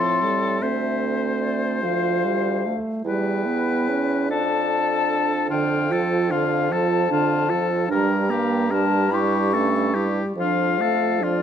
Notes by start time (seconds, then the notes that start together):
Already playing: A2 F3 C4 A4 C6
0.23 G3
0.60 D2 A3 C4 C5 E5
1.42 D5
1.82 F3 F4 F5
2.24 G3
2.66 A3
3.04 E2 G3 E4 G5
3.08 B4
3.46 B3
3.89 C#4
4.28 F2 D4 A4 A5
5.50 F2 D3 D4 F4 G5
5.90 F3 F4 A4
6.30 D3 D4 F4 F5
6.71 F3 F4 A4 A5
7.10 D3 D4 F4
7.49 F3 F4 A4
7.88 G2 G3 D4 A#4 A#5
8.30 A#3 G4
8.71 G3 D4 A#4 A5
9.12 G3 E4 G4 C#6
9.54 A3 C#4 A4
9.94 G3 E4 G4
10.37 F2 F3 D4 F4 F5
10.78 A3 F4 A4
11.20 F3 D4 F4 D5